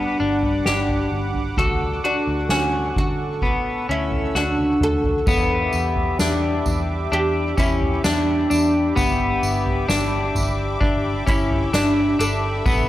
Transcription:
Already playing: G3 B3 D4 F#5 B5 D6
0.20 G1 D4
0.43 floor tom
0.66 G1 D4 G4, snare
0.89 floor tom
1.12 G1
1.34 floor tom
1.57 D2 F#4 A4 C#6, kick, floor tom
2.04 D4 F#4
2.27 D2
2.49 D2 C#4 F#4, snare
2.96 D3 F#4, kick
3.41 B3 E6, kick, floor tom
3.89 D2 C#4 E4
4.11 floor tom
4.35 D2 D4 F#4, snare
4.58 high tom
4.81 D2 A4, mid tom
5.04 floor tom
5.27 E2 B3 G4 E5 B5 D6, kick, floor tom, crash, tambourine
5.73 E2, tambourine
5.96 floor tom
6.19 E2 D4, snare, tambourine
6.66 E2, floor tom, tambourine
7.12 E2 D4 G4
7.57 E2 C#4 E4, kick, tambourine
7.81 floor tom
8.04 E2 D4, snare, tambourine
8.50 E2 D4, tambourine
8.96 G1 B3 E5 D6, floor tom, tambourine
9.43 G1, tambourine
9.66 floor tom
9.88 G1 D4, snare, tambourine
10.35 G1, floor tom, tambourine
10.81 G1 D4, kick
11.27 G1 C#4 E4, kick, tambourine
11.51 floor tom
11.73 G1 D4, snare, tambourine
12.19 G1 D4 A4, tambourine
12.65 A1 B3 A4 C#6, kick, floor tom, tambourine

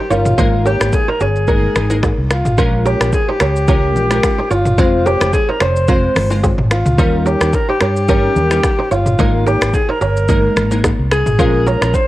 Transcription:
0.10 G1 G3 C#4 D#4 F4 A#4 C#5, low bongo, shaker
0.25 mid tom, high bongo, shaker
0.38 G#1 G#3 A#3 D#4 A#4 C5, kick, low conga, shaker
0.65 C#4 G4 A#4, high bongo, shaker
0.80 G#1, finger snap, cross-stick, low bongo, shaker
0.92 G#4, kick, high bongo, shaker
1.08 D#4 A#4 C5
1.20 G1 C#4 G#4 A#4, shaker
1.36 shaker
1.48 G#3 A#3 D#4 A#4, kick, low conga, shaker
1.75 G#1, finger snap, cross-stick, low conga, shaker
1.90 G#3 A#3 D#4 A#4, low bongo, shaker
2.03 D#4 G#4, finger snap, kick, cross-stick, high bongo, shaker
2.18 C2
2.31 F4, finger snap, cross-stick, low bongo, shaker
2.45 G#1, mid tom, high bongo, shaker
2.58 A#1 G#3 C#4 F4 A#4 C5, kick, low conga, shaker
2.86 C#4 G4 A#4, high bongo, shaker
3.01 A#1, finger snap, cross-stick, low bongo, shaker
3.13 G#4, kick, high bongo, shaker
3.29 D#4 G4 C5
3.40 C#2 C#4 G4 A#4, finger snap, cross-stick, shaker
3.56 shaker
3.68 G#3 C#4 F4 A#4, kick, low conga, shaker
3.96 A#1, low conga, shaker
4.11 G#3 C#4 F4 A#4, finger snap, cross-stick, low bongo, shaker
4.23 finger snap, kick, cross-stick, high bongo, shaker
4.38 D#4 C5
4.51 G1 F4 C#5, low bongo, shaker
4.66 mid tom, high bongo, shaker
4.78 F1 G#3 C4 F4 C5, kick, low conga, shaker
5.06 C#4 G4 A#4, high bongo, low bongo, shaker
5.21 F1, finger snap, cross-stick, low bongo, shaker
5.33 G#4, kick, high bongo, shaker
5.49 D#4 A#4 C5
5.60 F1 C#4 A#4 C5, finger snap, cross-stick, shaker
5.76 shaker
5.88 G#3 C4 F4 A#4 C5, kick, low conga, shaker
6.16 G1, finger snap, cross-stick, open hi-hat, low conga, shaker
6.30 G#3 C4 F4 C5, low bongo, shaker
6.43 C4 G#4, kick, high bongo, shaker
6.58 G#1, mid tom
6.71 F4, finger snap, cross-stick, low bongo, shaker
6.86 C#2, mid tom, high bongo, shaker
6.98 D#2 G3 C#4 D#4 A#4 C5, kick, low conga, shaker
7.26 C#4 G4 A#4, high bongo, shaker
7.41 D#2, finger snap, cross-stick, low bongo, shaker
7.53 A#4, kick, high bongo, shaker
7.69 D#4 G4 C5
7.80 G2 C#4 G4 A#4, finger snap, cross-stick, shaker
7.96 shaker
8.08 G3 C#4 D#4 A#4, kick, low conga, shaker
8.36 D#2, low conga, shaker
8.51 G3 C#4 D#4 A#4, finger snap, cross-stick, low bongo, shaker
8.64 finger snap, kick, cross-stick, high bongo, shaker
8.79 D#4 C5
8.91 G1 F4 C#5, low bongo, shaker
9.06 mid tom, high bongo, shaker
9.18 G#1 G#3 A#3 D#4 A#4 C5, kick, low conga, shaker
9.46 C#4 G4 A#4, high bongo, shaker
9.61 G#1, finger snap, cross-stick, low bongo, shaker
9.73 G#4, kick, high bongo, shaker
9.89 D#4 A#4 C5
10.01 G1 C#4 A#4, shaker
10.17 shaker
10.28 G#3 A#3 D#4 A#4, kick, low conga, shaker
10.56 G#1, finger snap, cross-stick, low conga, shaker
10.71 G#3 A#3 D#4 A#4, low bongo, shaker
10.84 D#4 G#4, finger snap, kick, cross-stick, high bongo, shaker
10.99 C2
11.11 G#4, finger snap, cross-stick, low bongo, shaker
11.26 G#1, mid tom, high bongo, shaker
11.39 A#1 G#3 C#4 F4 A#4 C5, kick, low conga, shaker
11.66 C#4 A#4, high bongo, shaker
11.81 A#1, finger snap, cross-stick, low bongo, shaker
11.94 C5, kick, high bongo, shaker

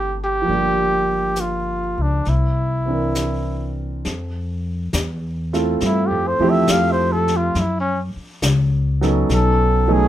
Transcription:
Already playing: G1 E3 A3 C4 D4 G4 A4
0.24 G4
0.42 F3 A#3
0.48 G1 D4, brush sweep
0.53 G4
1.36 snare, hi-hat pedal
1.40 F4
1.98 C#2
2.02 D4
2.25 C2 E4, brush sweep, snare
2.86 E3 C4 D4
2.90 A#4
3.15 snare, hi-hat pedal
4.05 F2, brush sweep, snare
4.93 E2, snare, hi-hat pedal
5.53 A3 C4 E4 F4 A4, snare
5.80 G2, brush sweep, snare
5.85 E4
6.07 F2 G4
6.27 C5
6.39 E2 F3 A3 C4 E4 G4
6.50 E5
6.67 F2 F5, snare, hi-hat pedal
6.92 C5
7.12 A4
7.28 snare
7.37 F4
7.55 F#2 E4, brush sweep, snare
7.80 C#4
8.16 muted upright bass stroke
8.42 C#2, snare, hi-hat pedal
9.01 F#3 B3 C#4 D#4 A4, snare
9.29 B1, brush sweep, snare
9.34 A4
9.88 F#3 A3 B3 C#4 D#4
9.92 G#4

